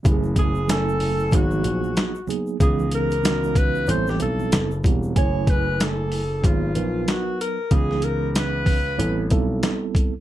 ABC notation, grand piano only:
X:1
M:4/4
L:1/8
Q:"Swing 16ths" 1/4=94
K:F#dor
V:1 name="Grand piano" clef=bass
F,,,4 G,,, ^A,,, z2 | C,,4 A,,, B,,, F,,, E,,, | F,,,4 G,,, ^A,,, z2 | C,,4 A,,, B,,, z2 |]